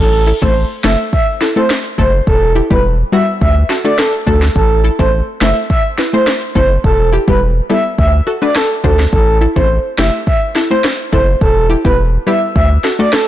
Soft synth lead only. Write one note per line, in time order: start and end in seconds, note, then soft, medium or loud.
0.00 0.24 A4 loud
0.42 0.54 C5 medium
0.84 0.98 E5 medium
1.13 1.26 E5 medium
1.57 1.68 C5 medium
1.99 2.12 C5 medium
2.27 2.52 A4 loud
2.71 2.83 B4 medium
3.13 3.26 E5 medium
3.42 3.55 E5 medium
3.85 3.97 D5 medium
3.98 4.12 A4 medium
4.27 4.40 A4 medium
4.56 4.81 A4 loud
4.99 5.11 C5 medium
5.41 5.55 E5 medium
5.70 5.83 E5 medium
6.14 6.26 C5 medium
6.56 6.69 C5 medium
6.84 7.09 A4 loud
7.28 7.40 B4 medium
7.70 7.83 E5 medium
7.98 8.12 E5 medium
8.42 8.54 D5 medium
8.56 8.69 A4 medium
8.84 8.98 A4 medium
9.13 9.38 A4 loud
9.56 9.68 C5 medium
9.98 10.12 E5 medium
10.27 10.40 E5 medium
10.71 10.83 C5 medium
11.13 11.26 C5 medium
11.41 11.67 A4 loud
11.85 11.97 B4 medium
12.27 12.40 E5 medium
12.56 12.69 E5 medium
12.99 13.11 D5 medium
13.13 13.26 A4 medium